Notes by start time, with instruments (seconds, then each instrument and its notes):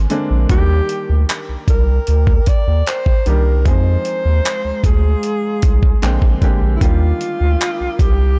Already playing: ambient pad A#4 G#5 C6 D6
0.10 grand piano D3 G#3 A#3 C4 D4, closed hi-hat
0.30 analog synth bass A#1
0.49 analog synth bass D#2, grand piano D#3 G3 A#3 D4 F#4, alto saxophone G4, ambient pad G5 A#5 D6, kick, closed hi-hat
0.58 grand piano G4
0.89 closed hi-hat
1.09 analog synth bass D2
1.29 clap, closed hi-hat
1.49 analog synth bass C2
1.68 analog synth bass C2, alto saxophone A#4, kick, closed hi-hat
2.07 analog synth bass D2, closed hi-hat
2.27 kick
2.46 alto saxophone D5, kick, closed hi-hat
2.67 analog synth bass D#2
2.87 alto saxophone C5, clap, closed hi-hat
3.06 kick
3.26 analog synth bass C2, grand piano D#3 G3 A#3 D4 G4, alto saxophone A#4, closed hi-hat
3.65 analog synth bass F2, grand piano F3 G#3 C4 D#4 G#4, ambient pad G#3 F5 C6, alto saxophone C5, kick, closed hi-hat
4.05 closed hi-hat
4.25 analog synth bass D#2
4.45 clap, closed hi-hat
4.65 analog synth bass D2
4.84 analog synth bass D2, alto saxophone G#4, kick, closed hi-hat
5.23 closed hi-hat
5.62 analog synth bass C2, kick, closed hi-hat
5.83 kick
6.02 analog synth bass A#1, grand piano D3 G#3 A#3 C4 G5, ambient pad G5 D6, clap, closed hi-hat
6.22 analog synth bass A#1, kick
6.42 grand piano D3 G#3 A#3 C4 G4, kick, closed hi-hat
6.62 analog synth bass A#1
6.76 alto saxophone E4
6.81 analog synth bass D#2, grand piano D#3 G3 A#3 D4 G4, alto saxophone F4, ambient pad A#4 D#6, kick, closed hi-hat
7.21 closed hi-hat
7.41 analog synth bass D2
7.61 clap, closed hi-hat
7.80 analog synth bass C2
7.99 analog synth bass C2, alto saxophone G4, kick, closed hi-hat